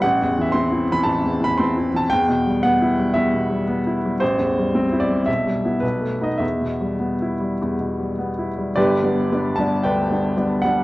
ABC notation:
X:1
M:4/4
L:1/16
Q:1/4=113
K:Em
V:1 name="Upright piano"
f3 e c'3 b a3 b c'3 a | g4 f4 e8 | c6 d2 e4 B3 ^d | e12- e2 z2 |
[K:G] [GBd]6 a2 [Bdg]6 f2 |]
V:2 name="Upright piano" clef=bass
(3A,,,2 E,,2 E,2 (3C2 E2 E,2 (3A,,,2 E,,2 E,2 (3C2 E2 E,2 | (3E,,2 B,,2 G,2 (3B,2 E2 G,2 (3E,,2 B,,2 G,2 (3B,2 E2 G,2 | (3A,,,2 E,,2 G,2 (3C2 E2 G,2 (3B,,,2 G,2 [B,E]2 (3B,,,2 A,2 [B,^D]2 | (3E,,2 B,,2 G,2 (3B,2 E2 G,2 (3E,,2 B,,2 G,2 (3B,2 E2 G,2 |
[K:G] [G,,,G,,]2 [G,B,D]2 [G,B,D]2 [G,B,D]2 D,,2 [G,B,D]2 [G,B,D]2 [G,B,D]2 |]